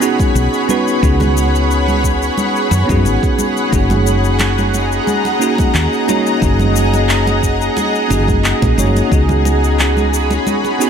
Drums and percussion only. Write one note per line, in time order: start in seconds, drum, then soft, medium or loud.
0.02 cabasa medium
0.20 kick loud
0.20 high conga medium
0.20 cabasa soft
0.36 cabasa soft
0.54 cabasa soft
0.69 high conga medium
0.69 cabasa medium
0.88 cabasa soft
1.03 kick loud
1.03 cabasa soft
1.20 high conga medium
1.20 low conga medium
1.20 cabasa soft
1.37 cabasa medium
1.55 cabasa soft
1.71 cabasa soft
1.88 high conga medium
1.88 cabasa soft
2.04 kick medium
2.04 cabasa medium
2.22 cabasa soft
2.38 high conga medium
2.38 cabasa soft
2.56 cabasa soft
2.71 low conga medium
2.71 cabasa medium
2.89 kick loud
2.89 high conga medium
2.89 cabasa soft
3.06 cabasa soft
3.23 kick medium
3.23 cabasa soft
3.39 high conga medium
3.39 cabasa medium
3.57 cabasa soft
3.73 kick loud
3.73 cabasa soft
3.90 muted conga soft
3.90 high conga medium
3.90 low conga medium
3.90 cabasa soft
4.07 cabasa medium
4.24 cabasa soft
4.39 clap medium
4.39 muted conga medium
4.39 cabasa soft
4.58 high conga medium
4.58 cabasa soft
4.74 muted conga soft
4.74 cabasa medium
4.92 cabasa soft
5.07 high conga medium
5.07 cabasa soft
5.25 muted conga medium
5.25 cabasa soft
5.41 cabasa medium
5.58 kick medium
5.58 muted conga soft
5.58 high conga medium
5.58 cabasa soft
5.75 clap medium
5.75 cabasa soft
5.93 cabasa soft
6.09 muted conga medium
6.09 high conga medium
6.09 cabasa medium
6.27 cabasa soft
6.42 kick loud
6.42 muted conga soft
6.42 cabasa soft
6.59 high conga medium
6.59 low conga medium
6.59 cabasa soft
6.76 cabasa medium
6.94 muted conga medium
6.94 cabasa soft
7.09 clap medium
7.09 cabasa soft
7.27 muted conga soft
7.27 high conga medium
7.27 cabasa soft
7.43 kick soft
7.43 cabasa medium
7.61 cabasa soft
7.77 muted conga medium
7.77 high conga medium
7.77 cabasa soft
7.95 cabasa soft
8.10 muted conga soft
8.10 low conga medium
8.10 cabasa medium
8.28 kick medium
8.28 high conga medium
8.28 cabasa soft
8.44 clap medium
8.44 cabasa soft
8.62 kick medium
8.62 muted conga medium
8.62 cabasa soft
8.78 high conga medium
8.78 cabasa medium
8.96 muted conga soft
8.96 cabasa soft
9.12 kick medium
9.12 cabasa soft
9.29 high conga medium
9.29 low conga medium
9.29 cabasa soft
9.45 muted conga medium
9.45 cabasa medium
9.64 cabasa soft
9.79 clap medium
9.79 muted conga medium
9.79 cabasa soft
9.97 high conga medium
9.97 cabasa soft
10.14 cabasa medium
10.31 muted conga medium
10.31 cabasa soft
10.47 high conga medium
10.47 cabasa soft
10.65 muted conga soft
10.65 cabasa soft
10.81 cabasa medium